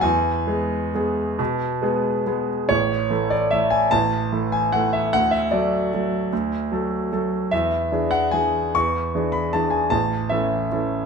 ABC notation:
X:1
M:3/4
L:1/8
Q:1/4=148
K:A
V:1 name="Grand piano"
g6- | g4- g z | c3 d e g | a3 g f e |
f e d4- | d6 | e3 f g2 | c'3 b a g |
a2 e4 |]
V:2 name="Grand piano"
E,,2 [G,B,G]2 [G,B,G]2 | B,,2 [G,B,G]2 [G,B,G]2 | A,,,2 [E,A,A]2 [E,A,A]2 | A,,,2 [E,A,A]2 [E,A,A]2 |
D,,2 [F,A,A]2 [F,A,A]2 | D,,2 [F,A,A]2 [F,A,A]2 | E,,2 [E,DG]2 [E,DG]2 | E,,2 [E,DG]2 [E,DG]2 |
A,,,2 [E,CA]2 [E,CA]2 |]